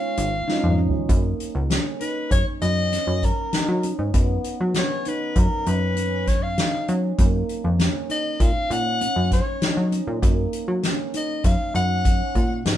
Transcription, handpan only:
0.00 0.39 C#4 medium
0.48 0.74 D#4 medium
0.78 1.05 C#4 medium
1.09 1.61 A#3 medium
1.70 1.96 C#4 medium
2.01 2.52 D#4 medium
2.62 2.88 C#4 medium
2.92 3.44 C#4 medium
3.54 3.79 D#4 medium
3.84 4.10 C#4 medium
4.14 4.66 B3 medium
4.75 5.01 C#4 medium
5.06 5.58 D#4 medium
5.67 5.93 C#4 medium
5.97 6.48 C#4 medium
6.58 6.84 D#4 medium
6.89 7.15 C#4 medium
7.19 7.70 A#3 medium
7.79 8.05 C#4 medium
8.10 8.61 D#4 medium
8.71 8.97 C#4 medium
9.01 9.53 C#4 medium
9.62 9.88 D#4 medium
9.92 10.18 C#4 medium
10.22 10.74 A#3 medium
10.83 11.09 C#4 medium
11.14 11.65 D#4 medium
11.75 12.01 C#4 medium
12.05 12.57 C#4 medium
12.66 12.77 D#4 medium

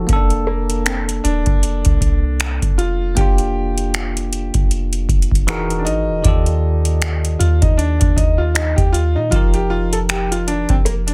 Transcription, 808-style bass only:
0.09 1.21 F1 loud
1.25 1.46 D#1 loud
1.47 1.84 F1 loud
1.86 2.60 C2 loud
2.62 3.15 F1 loud
3.17 4.51 F1 loud
4.55 5.07 F1 loud
5.09 5.88 E1 loud
5.86 6.10 G#1 loud
6.09 6.24 E1 medium
6.25 7.36 D#2 loud
7.40 7.62 D#2 loud
7.62 7.99 D#2 medium
8.02 8.75 D#2 loud
8.78 9.17 D#2 loud
9.16 9.31 A#2 medium
9.32 10.66 F1 loud
10.69 11.10 F1 loud
11.08 11.14 D#1 loud

